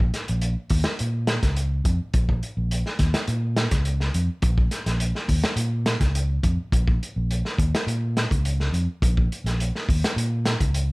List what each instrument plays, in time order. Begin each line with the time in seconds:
0.00 kick
0.14 snare, closed hi-hat
0.28 fingered electric bass A#1, closed hi-hat
0.41 closed hi-hat
0.70 fingered electric bass D#2, kick, open hi-hat
0.84 snare, closed hi-hat
0.99 fingered electric bass A#2, closed hi-hat
1.27 snare, closed hi-hat
1.43 fingered electric bass C#2, kick, snare, closed hi-hat
1.56 closed hi-hat
1.84 fingered electric bass F2, kick, closed hi-hat
2.14 fingered electric bass A#1, kick, closed hi-hat
2.29 kick
2.43 closed hi-hat
2.57 fingered electric bass A#1
2.71 closed hi-hat
2.86 snare
2.99 fingered electric bass D#2, kick, snare, closed hi-hat
3.14 snare, closed hi-hat
3.27 fingered electric bass A#2, closed hi-hat
3.57 snare, closed hi-hat
3.71 fingered electric bass C#2, kick, snare, closed hi-hat
3.85 closed hi-hat
4.00 snare
4.14 fingered electric bass F2, closed hi-hat
4.42 fingered electric bass A#1, kick, closed hi-hat
4.58 kick
4.71 snare, closed hi-hat
4.86 fingered electric bass A#1, snare, closed hi-hat
5.00 closed hi-hat
5.15 snare
5.28 fingered electric bass D#2, kick, open hi-hat
5.44 snare, closed hi-hat
5.56 fingered electric bass A#2, closed hi-hat
5.86 snare, closed hi-hat
6.00 fingered electric bass C#2, kick, snare, closed hi-hat
6.15 closed hi-hat
6.43 fingered electric bass F2, kick, closed hi-hat
6.72 fingered electric bass A#1, kick, closed hi-hat
6.88 kick
7.03 closed hi-hat
7.16 fingered electric bass A#1
7.31 closed hi-hat
7.45 snare
7.58 fingered electric bass D#2, kick, closed hi-hat
7.75 snare, closed hi-hat
7.87 fingered electric bass A#2, closed hi-hat
8.17 snare, closed hi-hat
8.31 fingered electric bass C#2, kick, closed hi-hat
8.45 closed hi-hat
8.60 snare
8.73 fingered electric bass F2, closed hi-hat
9.02 fingered electric bass A#1, kick, closed hi-hat
9.17 kick
9.32 closed hi-hat
9.44 fingered electric bass A#1, snare, closed hi-hat
9.60 closed hi-hat
9.75 snare
9.89 fingered electric bass D#2, kick, open hi-hat
10.04 snare, closed hi-hat
10.16 fingered electric bass A#2, closed hi-hat
10.45 snare, closed hi-hat
10.60 fingered electric bass C#2, kick, closed hi-hat
10.74 closed hi-hat